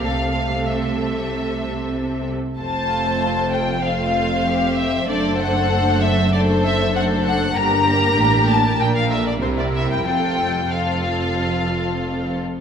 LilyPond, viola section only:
\new Staff \with { instrumentName = "Viola section" } { \time 4/4 \key f \major \tempo 4 = 96 << { c'2.~ c'8 r8 | c'2 c'2 | d'2 d'4 d'4 | d'2 d'4 c'4 |
c'4 c'2~ c'8 r8 | } \\ { a2.~ a8 r8 | a2 a2 | a2 a4 a4 | bes2 bes8 a8 g4 |
f4 f2~ f8 r8 | } >> }